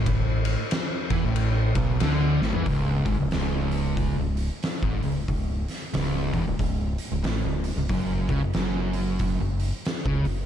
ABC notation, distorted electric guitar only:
X:1
M:4/4
L:1/16
Q:"Swing" 1/4=92
K:A
V:1 name="Distorted electric guitar" clef=bass
A,,3 z3 E, A,,3 B,,2 D,2 A,, E, | C,,2 G,, C,, C,,4- C,, C,,2 z2 G,, C,,2 | C,,2 z2 C,,2 E,, C,, C,,2 z C,, A,, C,,2 C,, | F,,2 C, F,, F,,4- F,, F,,2 z2 C, F,,2 |]